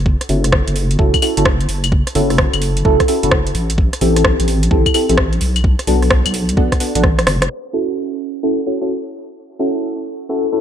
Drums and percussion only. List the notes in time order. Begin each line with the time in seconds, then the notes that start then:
0.06 kick
0.21 cross-stick, closed hi-hat
0.29 open hi-hat
0.44 cross-stick, closed hi-hat
0.52 kick, cross-stick
0.68 closed hi-hat
0.76 open hi-hat
0.91 closed hi-hat
0.99 kick
1.14 kick, closed hi-hat, claves
1.22 open hi-hat, claves
1.37 closed hi-hat
1.45 kick, cross-stick
1.61 closed hi-hat
1.69 open hi-hat
1.84 closed hi-hat, claves
1.92 kick
2.07 cross-stick, closed hi-hat
2.15 open hi-hat
2.30 cross-stick, open hi-hat
2.38 kick, cross-stick
2.53 closed hi-hat, claves
2.62 open hi-hat
2.77 closed hi-hat
2.85 kick
3.00 kick, cross-stick, closed hi-hat
3.08 open hi-hat
3.23 closed hi-hat
3.31 kick, cross-stick
3.47 closed hi-hat
3.55 open hi-hat
3.70 closed hi-hat
3.78 kick
3.93 cross-stick, closed hi-hat
4.01 open hi-hat
4.16 cross-stick, closed hi-hat
4.25 kick, cross-stick
4.40 closed hi-hat
4.48 open hi-hat
4.63 closed hi-hat
4.71 kick
4.86 kick, closed hi-hat, claves
4.94 open hi-hat, claves
5.09 closed hi-hat
5.18 kick, cross-stick
5.33 closed hi-hat
5.41 open hi-hat
5.56 closed hi-hat, claves
5.64 kick
5.79 cross-stick, closed hi-hat
5.87 open hi-hat
6.02 cross-stick, open hi-hat
6.11 kick, cross-stick
6.26 closed hi-hat, claves
6.34 open hi-hat
6.49 closed hi-hat
6.57 kick
6.72 kick, cross-stick, closed hi-hat
6.80 open hi-hat
6.95 closed hi-hat
7.04 kick, cross-stick
7.19 cross-stick, closed hi-hat
7.27 cross-stick, open hi-hat
7.42 cross-stick, closed hi-hat
8.20 open hi-hat
8.58 claves
8.66 claves
9.13 open hi-hat
9.28 claves
9.98 claves
10.06 open hi-hat
10.52 open hi-hat